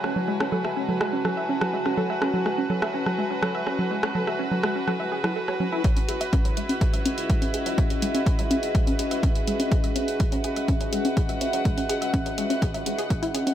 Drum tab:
HH |----------------|----------------|----------------|xxxxxxxxxxxxxxxx|
SD |r--r-r--r-r--r-r|--r-r--r-r--r-r-|-r-r--r-r--r-r--|----------------|
CG |-O--O--O--O--O--|O--O--O--O--O--O|--O--O--O--O--O-|-----O---O-----O|
BD |----------------|----------------|----------------|o---o---o---o---|

HH |xxxxxxxxxxxxxxxx|xxxxxxxxxxxxxxxx|xxxxxxxxxxxxxxxx|
SD |----------------|----------------|----------------|
CG |-----O---O------|-----O---O-----O|-----O---O------|
BD |o---o---o---o---|o---o---o---o---|o---o---o---o---|